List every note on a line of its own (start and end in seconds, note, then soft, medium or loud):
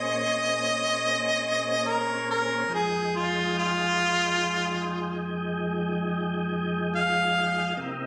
0.00 2.64 A#2 medium
0.00 2.64 C4 medium
0.00 2.64 C#4 medium
0.00 2.64 G#4 medium
0.00 1.90 D#5 loud
1.88 2.27 A#4 medium
2.31 2.70 A#4 medium
2.68 7.73 F2 medium
2.68 7.73 G#3 medium
2.68 7.73 D#4 medium
2.68 7.74 G5 medium
2.74 3.18 G#4 medium
3.17 3.55 F4 medium
3.59 5.22 F4 loud
6.96 7.77 F5 loud
7.77 8.06 C3 medium
7.77 8.06 A#3 medium
7.77 8.06 D#4 medium
7.77 8.06 E4 medium
7.77 8.06 G4 medium